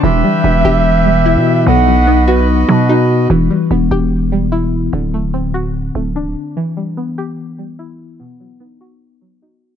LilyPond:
<<
  \new Staff \with { instrumentName = "Soft synth lead" } { \time 4/4 \key e \minor \tempo 4 = 147 e''1 | fis''4. b'8 r2 | r1 | r1 |
r1 | r1 | }
  \new Staff \with { instrumentName = "Accordion" } { \time 4/4 \key e \minor <g' b' e''>1 | <fis' b' dis''>1 | r1 | r1 |
r1 | r1 | }
  \new Staff \with { instrumentName = "Tine electric piano" } { \time 4/4 \key e \minor e4 b2 e'4 | b4 dis'2 fis'4 | e4 b2 e'4 | d4 c'2 d'4 |
e4 b2 e'4 | b4 dis'2 fis'4 | }
  \new Staff \with { instrumentName = "Synth pluck" } { \time 4/4 \key e \minor e8 g8 b8 g'4 g8 e'4 | b,8 fis8 b8 fis'4 fis8 dis'4 | e8 g8 b8 g'4 g8 e'4 | d8 a8 c'8 fis'4 a8 d'4 |
e8 g8 b8 g'4 g8 e'4 | b,8 fis8 b8 fis'4 fis8 dis'4 | }
  \new Staff \with { instrumentName = "808-style bass" } { \clef bass \time 4/4 \key e \minor e,,8 r8 e,,8 e,,4.~ e,,16 b,8. | b,,2~ b,,8 b,4. | e,,8 r8 e,,8 e,,2~ e,,8 | d,,2~ d,,8 d,,8 c,,16 d,,16 r8 |
r1 | r1 | }
>>